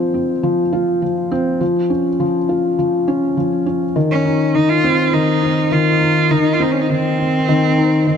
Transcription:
0, 0, Header, 1, 3, 480
1, 0, Start_track
1, 0, Tempo, 588235
1, 1310, Time_signature, 4, 2, 24, 8
1, 6668, End_track
2, 0, Start_track
2, 0, Title_t, "Cello"
2, 0, Program_c, 0, 42
2, 3354, Note_on_c, 0, 61, 96
2, 3713, Note_on_c, 0, 63, 95
2, 3725, Note_off_c, 0, 61, 0
2, 3830, Note_on_c, 0, 65, 101
2, 3842, Note_off_c, 0, 63, 0
2, 4189, Note_on_c, 0, 63, 95
2, 4201, Note_off_c, 0, 65, 0
2, 4671, Note_on_c, 0, 65, 98
2, 4683, Note_off_c, 0, 63, 0
2, 5150, Note_on_c, 0, 63, 99
2, 5163, Note_off_c, 0, 65, 0
2, 5328, Note_on_c, 0, 65, 86
2, 5340, Note_off_c, 0, 63, 0
2, 5405, Note_on_c, 0, 63, 83
2, 5418, Note_off_c, 0, 65, 0
2, 5481, Note_on_c, 0, 61, 79
2, 5493, Note_off_c, 0, 63, 0
2, 5556, Note_on_c, 0, 63, 77
2, 5568, Note_off_c, 0, 61, 0
2, 5630, Note_on_c, 0, 60, 99
2, 5642, Note_off_c, 0, 63, 0
2, 6668, Note_off_c, 0, 60, 0
2, 6668, End_track
3, 0, Start_track
3, 0, Title_t, "Felt piano"
3, 0, Program_c, 1, 0
3, 0, Control_c, 1, 64, 127
3, 0, Note_on_c, 1, 53, 68
3, 0, Note_on_c, 1, 60, 85
3, 99, Note_off_c, 1, 53, 0
3, 114, Note_off_c, 1, 60, 0
3, 114, Note_on_c, 1, 60, 57
3, 249, Note_off_c, 1, 60, 0
3, 353, Note_on_c, 1, 53, 88
3, 488, Note_off_c, 1, 53, 0
3, 592, Note_on_c, 1, 65, 66
3, 819, Note_off_c, 1, 65, 0
3, 832, Note_on_c, 1, 53, 65
3, 1059, Note_off_c, 1, 53, 0
3, 1073, Note_on_c, 1, 60, 85
3, 1299, Note_off_c, 1, 60, 0
3, 1311, Note_on_c, 1, 53, 74
3, 1319, Control_c, 1, 64, 0
3, 1442, Control_c, 1, 64, 127
3, 1538, Note_off_c, 1, 53, 0
3, 1549, Note_on_c, 1, 61, 64
3, 1687, Note_off_c, 1, 61, 0
3, 1794, Note_on_c, 1, 53, 88
3, 1929, Note_off_c, 1, 53, 0
3, 2031, Note_on_c, 1, 65, 62
3, 2259, Note_off_c, 1, 65, 0
3, 2274, Note_on_c, 1, 53, 72
3, 2500, Note_off_c, 1, 53, 0
3, 2512, Note_on_c, 1, 61, 83
3, 2739, Note_off_c, 1, 61, 0
3, 2751, Note_on_c, 1, 53, 69
3, 2979, Note_off_c, 1, 53, 0
3, 2989, Note_on_c, 1, 61, 66
3, 3126, Note_off_c, 1, 61, 0
3, 3229, Note_on_c, 1, 51, 87
3, 3238, Control_c, 1, 64, 0
3, 3367, Note_off_c, 1, 51, 0
3, 3383, Control_c, 1, 64, 127
3, 3469, Note_on_c, 1, 63, 66
3, 3697, Note_off_c, 1, 63, 0
3, 3712, Note_on_c, 1, 51, 66
3, 3939, Note_off_c, 1, 51, 0
3, 3949, Note_on_c, 1, 60, 85
3, 4178, Note_off_c, 1, 60, 0
3, 4187, Note_on_c, 1, 51, 69
3, 4416, Note_off_c, 1, 51, 0
3, 4429, Note_on_c, 1, 60, 67
3, 4567, Note_off_c, 1, 60, 0
3, 4666, Note_on_c, 1, 51, 89
3, 4805, Note_off_c, 1, 51, 0
3, 4906, Note_on_c, 1, 63, 65
3, 5136, Note_off_c, 1, 63, 0
3, 5147, Note_on_c, 1, 51, 78
3, 5162, Control_c, 1, 64, 0
3, 5318, Control_c, 1, 64, 127
3, 5377, Note_off_c, 1, 51, 0
3, 5385, Note_on_c, 1, 60, 91
3, 5616, Note_off_c, 1, 60, 0
3, 5628, Note_on_c, 1, 51, 68
3, 5857, Note_off_c, 1, 51, 0
3, 5866, Note_on_c, 1, 60, 58
3, 6005, Note_off_c, 1, 60, 0
3, 6108, Note_on_c, 1, 51, 92
3, 6246, Note_off_c, 1, 51, 0
3, 6347, Note_on_c, 1, 63, 69
3, 6576, Note_off_c, 1, 63, 0
3, 6583, Note_on_c, 1, 51, 70
3, 6668, Note_off_c, 1, 51, 0
3, 6668, End_track
0, 0, End_of_file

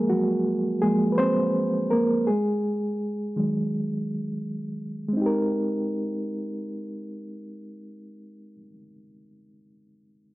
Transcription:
0, 0, Header, 1, 2, 480
1, 0, Start_track
1, 0, Key_signature, -4, "major"
1, 0, Tempo, 722892
1, 1512, Time_signature, 4, 2, 24, 8
1, 6868, End_track
2, 0, Start_track
2, 0, Title_t, "Reed electric piano"
2, 0, Program_c, 0, 4
2, 0, Control_c, 0, 64, 127
2, 0, Note_on_c, 0, 53, 54
2, 0, Note_on_c, 0, 56, 61
2, 0, Note_on_c, 0, 58, 67
2, 0, Note_on_c, 0, 68, 77
2, 0, Note_on_c, 0, 70, 78
2, 64, Note_on_c, 0, 66, 73
2, 80, Note_on_c, 0, 54, 54
2, 529, Note_off_c, 0, 54, 0
2, 542, Note_off_c, 0, 68, 0
2, 542, Note_on_c, 0, 68, 84
2, 551, Note_off_c, 0, 53, 0
2, 551, Note_on_c, 0, 53, 43
2, 554, Note_off_c, 0, 56, 0
2, 554, Note_on_c, 0, 56, 67
2, 555, Note_off_c, 0, 58, 0
2, 555, Note_on_c, 0, 58, 50
2, 562, Note_off_c, 0, 66, 0
2, 637, Note_off_c, 0, 68, 0
2, 649, Note_off_c, 0, 56, 0
2, 745, Note_on_c, 0, 71, 58
2, 768, Note_off_c, 0, 53, 0
2, 770, Note_off_c, 0, 58, 0
2, 783, Note_on_c, 0, 72, 88
2, 786, Note_off_c, 0, 71, 0
2, 791, Note_on_c, 0, 60, 72
2, 1245, Note_off_c, 0, 60, 0
2, 1265, Note_off_c, 0, 70, 0
2, 1265, Note_on_c, 0, 70, 77
2, 1279, Note_on_c, 0, 58, 61
2, 1282, Note_off_c, 0, 72, 0
2, 1499, Note_off_c, 0, 58, 0
2, 1507, Note_on_c, 0, 68, 73
2, 1516, Note_off_c, 0, 70, 0
2, 1520, Control_c, 0, 64, 0
2, 1521, Note_on_c, 0, 56, 60
2, 1622, Control_c, 0, 64, 127
2, 2232, Note_off_c, 0, 56, 0
2, 2232, Note_on_c, 0, 51, 45
2, 2236, Note_on_c, 0, 54, 44
2, 2240, Note_on_c, 0, 56, 51
2, 2923, Note_off_c, 0, 68, 0
2, 3369, Note_off_c, 0, 56, 0
2, 3377, Note_on_c, 0, 56, 61
2, 3406, Note_off_c, 0, 51, 0
2, 3407, Note_on_c, 0, 60, 55
2, 3408, Note_off_c, 0, 54, 0
2, 3431, Note_on_c, 0, 63, 55
2, 3439, Control_c, 0, 64, 0
2, 3463, Note_on_c, 0, 67, 51
2, 3494, Note_on_c, 0, 70, 68
2, 3552, Control_c, 0, 64, 127
2, 5677, Note_off_c, 0, 56, 0
2, 5707, Note_off_c, 0, 60, 0
2, 5731, Note_off_c, 0, 63, 0
2, 5762, Note_off_c, 0, 67, 0
2, 5793, Note_off_c, 0, 70, 0
2, 6868, End_track
0, 0, End_of_file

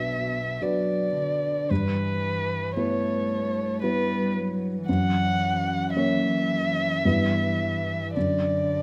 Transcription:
0, 0, Header, 1, 4, 480
1, 0, Start_track
1, 0, Tempo, 1094891
1, 746, Time_signature, 3, 2, 24, 8
1, 746, Tempo, 1067616
1, 3146, Tempo, 1132075
1, 3903, End_track
2, 0, Start_track
2, 0, Title_t, "Violin"
2, 0, Program_c, 0, 40
2, 0, Note_on_c, 0, 76, 50
2, 272, Note_on_c, 0, 74, 41
2, 279, Note_off_c, 0, 76, 0
2, 749, Note_on_c, 0, 71, 47
2, 756, Note_off_c, 0, 74, 0
2, 1223, Note_off_c, 0, 71, 0
2, 1225, Note_on_c, 0, 73, 47
2, 1691, Note_off_c, 0, 73, 0
2, 1700, Note_on_c, 0, 71, 44
2, 1931, Note_off_c, 0, 71, 0
2, 2172, Note_on_c, 0, 78, 61
2, 2638, Note_off_c, 0, 78, 0
2, 2657, Note_on_c, 0, 76, 56
2, 3602, Note_off_c, 0, 76, 0
2, 3618, Note_on_c, 0, 74, 49
2, 3903, Note_off_c, 0, 74, 0
2, 3903, End_track
3, 0, Start_track
3, 0, Title_t, "Grand piano"
3, 0, Program_c, 1, 0
3, 0, Control_c, 1, 64, 127
3, 0, Note_on_c, 1, 35, 27
3, 0, Note_on_c, 1, 62, 22
3, 0, Note_on_c, 1, 66, 21
3, 0, Note_on_c, 1, 71, 24
3, 254, Note_off_c, 1, 62, 0
3, 255, Note_off_c, 1, 66, 0
3, 256, Note_off_c, 1, 71, 0
3, 270, Note_on_c, 1, 62, 21
3, 271, Note_on_c, 1, 66, 19
3, 275, Note_on_c, 1, 71, 22
3, 729, Note_off_c, 1, 62, 0
3, 730, Note_off_c, 1, 66, 0
3, 732, Note_off_c, 1, 71, 0
3, 749, Note_on_c, 1, 43, 31
3, 754, Control_c, 1, 64, 0
3, 756, Note_off_c, 1, 35, 0
3, 814, Control_c, 1, 64, 127
3, 1211, Note_off_c, 1, 43, 0
3, 1223, Note_on_c, 1, 59, 23
3, 1226, Note_on_c, 1, 64, 25
3, 1229, Note_on_c, 1, 71, 28
3, 1682, Note_off_c, 1, 59, 0
3, 1683, Note_off_c, 1, 64, 0
3, 1685, Note_off_c, 1, 71, 0
3, 1703, Note_on_c, 1, 59, 25
3, 1704, Note_on_c, 1, 64, 23
3, 1706, Note_on_c, 1, 71, 29
3, 2157, Note_off_c, 1, 59, 0
3, 2158, Note_off_c, 1, 64, 0
3, 2159, Note_off_c, 1, 71, 0
3, 2178, Note_on_c, 1, 42, 39
3, 2182, Control_c, 1, 64, 0
3, 2263, Control_c, 1, 64, 127
3, 2645, Note_off_c, 1, 42, 0
3, 2660, Note_on_c, 1, 58, 28
3, 2662, Note_on_c, 1, 61, 26
3, 2664, Note_on_c, 1, 73, 30
3, 3128, Note_off_c, 1, 58, 0
3, 3129, Note_off_c, 1, 61, 0
3, 3129, Note_off_c, 1, 73, 0
3, 3150, Note_on_c, 1, 43, 36
3, 3150, Note_on_c, 1, 59, 26
3, 3152, Control_c, 1, 64, 0
3, 3155, Note_on_c, 1, 64, 24
3, 3156, Note_on_c, 1, 71, 24
3, 3224, Control_c, 1, 64, 127
3, 3604, Note_off_c, 1, 59, 0
3, 3607, Note_off_c, 1, 43, 0
3, 3607, Note_off_c, 1, 64, 0
3, 3608, Note_off_c, 1, 71, 0
3, 3624, Note_on_c, 1, 42, 31
3, 3626, Control_c, 1, 64, 0
3, 3708, Control_c, 1, 64, 127
3, 3903, Note_off_c, 1, 42, 0
3, 3903, End_track
4, 0, Start_track
4, 0, Title_t, "Cello"
4, 0, Program_c, 2, 42
4, 0, Note_on_c, 2, 47, 25
4, 266, Note_on_c, 2, 54, 30
4, 273, Note_off_c, 2, 47, 0
4, 498, Note_off_c, 2, 54, 0
4, 501, Note_on_c, 2, 50, 25
4, 742, Note_on_c, 2, 52, 29
4, 749, Note_off_c, 2, 50, 0
4, 1220, Note_on_c, 2, 57, 31
4, 1227, Note_off_c, 2, 52, 0
4, 1700, Note_on_c, 2, 55, 39
4, 1707, Note_off_c, 2, 57, 0
4, 1929, Note_on_c, 2, 54, 34
4, 1936, Note_off_c, 2, 55, 0
4, 2165, Note_off_c, 2, 54, 0
4, 2168, Note_on_c, 2, 52, 36
4, 3615, Note_on_c, 2, 50, 31
4, 3622, Note_off_c, 2, 52, 0
4, 3903, Note_off_c, 2, 50, 0
4, 3903, End_track
0, 0, End_of_file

